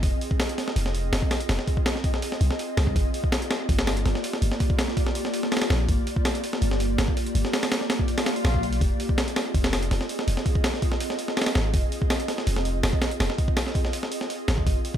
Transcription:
0.03 F1 C4 F4 G#4 D#5, kick, open hi-hat
0.21 open hi-hat
0.31 kick
0.40 snare, open hi-hat
0.49 closed hi-hat
0.58 snare, open hi-hat
0.68 snare
0.76 F1, open hi-hat
0.86 snare
0.95 open hi-hat
1.12 F1, snare, open hi-hat
1.22 kick
1.31 snare, open hi-hat
1.40 closed hi-hat
1.49 F1, snare, open hi-hat
1.59 snare
1.68 kick, open hi-hat
1.77 kick
1.86 snare, open hi-hat
1.95 snare
2.04 kick, open hi-hat
2.14 snare
2.22 open hi-hat
2.32 snare
2.41 C2, open hi-hat
2.51 snare
2.59 open hi-hat
2.77 C2, snare, open hi-hat
2.87 C2, kick
2.96 G1 A#3 F4 G4 D5, kick, open hi-hat
3.14 open hi-hat
3.24 kick
3.32 snare, open hi-hat
3.42 closed hi-hat
3.51 snare, open hi-hat
3.69 G1, kick, open hi-hat
3.79 snare, open hi-hat
3.87 snare, open hi-hat
3.97 closed hi-hat
4.05 G1, snare, open hi-hat
4.15 snare
4.24 open hi-hat
4.33 snare
4.42 G1 A#3 F4 G4 D5, open hi-hat
4.52 snare
4.60 kick, open hi-hat
4.70 kick
4.79 snare, open hi-hat
4.88 snare
4.97 kick, open hi-hat
5.07 snare
5.15 open hi-hat
5.25 snare
5.34 open hi-hat
5.43 snare
5.52 snare, open hi-hat
5.57 snare, open hi-hat
5.62 snare, open hi-hat
5.70 A#1, snare, open hi-hat
5.88 G1 A#3 F4 G4 D5, kick, open hi-hat
6.07 open hi-hat
6.16 kick
6.25 snare, open hi-hat
6.35 closed hi-hat
6.44 open hi-hat
6.53 snare
6.62 G1, open hi-hat
6.71 snare
6.80 open hi-hat
6.98 G1, snare, open hi-hat
7.08 kick
7.17 open hi-hat
7.27 closed hi-hat
7.34 G1 A#3 F4 G4 D5, open hi-hat
7.45 snare
7.53 snare, open hi-hat
7.63 snare, open hi-hat
7.72 snare, open hi-hat
7.81 snare
7.90 snare, open hi-hat
7.99 kick
8.08 open hi-hat, swell
8.18 snare, open hi-hat
8.26 snare, open hi-hat
8.36 open hi-hat
8.45 A#1, snare, open hi-hat
8.54 kick
8.63 C2, open hi-hat
8.72 A#1, open hi-hat
8.81 F1 C4 F4 G#4 D#5, kick, open hi-hat
9.00 open hi-hat
9.09 kick
9.18 snare, open hi-hat
9.28 closed hi-hat
9.36 snare, open hi-hat
9.55 F1, kick, open hi-hat
9.64 snare, open hi-hat
9.73 snare, open hi-hat
9.83 closed hi-hat
9.91 F1, snare, open hi-hat
10.01 snare
10.09 open hi-hat
10.19 snare
10.27 F1 C4 F4 G#4 D#5, open hi-hat
10.37 snare
10.46 kick, open hi-hat
10.55 kick
10.64 snare, open hi-hat
10.74 snare
10.82 kick, open hi-hat
10.92 snare
11.00 open hi-hat
11.10 snare
11.19 open hi-hat
11.28 snare
11.37 snare, open hi-hat
11.42 snare, open hi-hat
11.46 snare, open hi-hat
11.55 G#1, snare, open hi-hat
11.74 F1 C4 F4 G#4 D#5, kick, open hi-hat
11.92 open hi-hat
12.02 kick
12.10 snare, open hi-hat
12.20 closed hi-hat
12.28 snare, open hi-hat
12.38 snare
12.47 F1, open hi-hat
12.56 snare
12.65 open hi-hat
12.83 F1, snare, open hi-hat
12.93 kick
13.02 snare, open hi-hat
13.11 closed hi-hat
13.19 F1 C4 F4 G#4 D#5, snare, open hi-hat
13.30 snare
13.38 kick, open hi-hat
13.48 kick
13.57 snare, open hi-hat
13.67 snare
13.75 kick, open hi-hat
13.85 snare
13.93 open hi-hat
14.03 snare
14.12 open hi-hat
14.21 snare
14.30 open hi-hat
14.48 G#1, snare, open hi-hat
14.58 kick
14.67 G1 A#3 F4 G4 D5, kick, open hi-hat
14.85 open hi-hat
14.94 kick

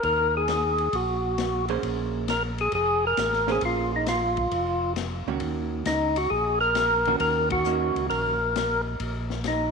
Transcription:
0.03 D#2 A#4, kick, ride
0.37 G#4
0.48 snare, hi-hat pedal, ride
0.78 ride
0.93 A#1 F#4, kick, ride
1.38 snare, hi-hat pedal, ride
1.68 A#3 C#4 G#4 C5, ride
1.83 A#1, kick, ride
2.28 A#4, snare, hi-hat pedal, ride
2.58 G#4, ride
2.72 F1 G#4, kick, ride
3.07 A#4
3.17 A1, snare, hi-hat pedal, ride
3.33 snare
3.47 A#3 C#4 G#4 C5, snare
3.52 G#4
3.61 A#1, kick, ride
3.65 F4
3.96 D#4
4.06 F4, snare, hi-hat pedal, ride
4.37 kick, ride
4.51 F1, kick, ride
4.96 snare, hi-hat pedal, ride
5.26 C#2 D#3 A#3 C#4 F#4
5.40 D#2, kick, ride
5.86 C#2 D#4, snare, hi-hat pedal, ride
6.16 F#4, ride
6.30 A#1 G#4, kick
6.61 A#4
6.75 snare, hi-hat pedal, ride
7.05 D#3 A#3 C#4 F#4, ride
7.20 D#2 A#4, kick, ride
7.50 F#4, kick, ride
7.65 D#3 A#3 C#4 F#4, hi-hat pedal
7.95 C#2, ride
8.10 A#1 A#4, kick, ride
8.56 snare, hi-hat pedal, ride
9.00 A#1, kick, ride
9.30 snare
9.44 D#4, snare, hi-hat pedal, ride

